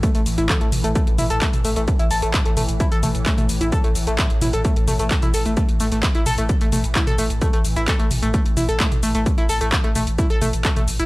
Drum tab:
HH |xxoxxxoxxxoxxxox|xxoxxxoxxxoxxxox|xxoxxxoxxxoxxxox|xxoxxxoxxxoxxxox|
SH |x-xxx-xxx-xxxxxx|x-xxx-xxx-xxxxxx|x-xxx-xxx-xxxxxx|x-xxx-xxx-xxxxxx|
CP |----x-------x---|----x-------x---|----x-------x---|----x-------x---|
T2 |------o---o--o--|------o---o--o--|------o---o--o--|------o---o--o--|
BD |o---o---o---o---|o---o---o---o---|o---o---o---o---|o---o---o---o---|

HH |xxoxxxoxxxoxxxox|xxoxxxoxxxoxxxox|
SH |x-xxx-xxx-xxxxxx|x-xxx-xxx-xxxxxx|
CP |----x-------x---|----x-------x---|
T2 |------o---o--o--|------o---o--o--|
BD |o---o---o---o---|o---o---o---o---|